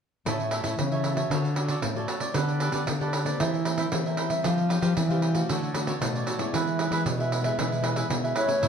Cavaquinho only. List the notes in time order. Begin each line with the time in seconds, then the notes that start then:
0.27 E4 A4 C#5 E5
0.52 E4 A4 C#5 E5
0.64 E4 A4 C#5 E5
0.92 A4 C#5 E5
1.04 E4 A4 C#5 E5
1.17 A4 C#5 E5
1.31 F#4 A4 C#5 D5
1.56 F#4 A4 C#5 D5
1.69 F#4 A4 C#5 D5
1.96 A4 C#5 D5
2.08 F#4 A4 C#5 D5
2.21 A4 C#5 D5
2.35 G4 A4 B4 D5
2.61 G4 A4 B4 D5
2.72 G4 A4 B4 D5
3.01 A4 B4 D5
3.12 G4 A4 B4 D5
3.25 A4 B4 D5
3.39 E4 A#4 C5 E5
3.65 E4 A#4 C5 E5
3.78 E4 A#4 C5 E5
4.06 A#4 C5 E5
4.17 E4 A#4 C5 E5
4.30 A#4 C5 E5
4.43 F4 G4 C5 F5
4.69 F4 G4 C5 F5
4.81 F4 G4 C5 F5
5.09 G4 C5 F5
5.21 F4 G4 C5 F5
5.35 G4 C5 F5
5.49 F#4 A4 C#5 D5
5.75 F#4 A4 C#5 D5
5.88 F#4 A4 C#5 D5
6.15 A4 C#5 D5
6.26 F#4 A4 C#5 D5
6.39 A4 C#5 D5
6.54 E4 G#4 B4 E5
6.79 E4 G#4 B4 E5
6.92 E4 G#4 B4 E5
7.20 G#4 B4 E5
7.32 E4 G#4 B4 E5
7.45 G#4 B4 E5
7.59 E4 G#4 B4 E5
7.84 E4 G#4 B4 E5
7.96 E4 G#4 B4 E5
8.23 G#4 B4 E5
8.35 E4 G#4 B4 E5
8.47 G#4 B4 E5
8.62 E4 A4 C#5 E5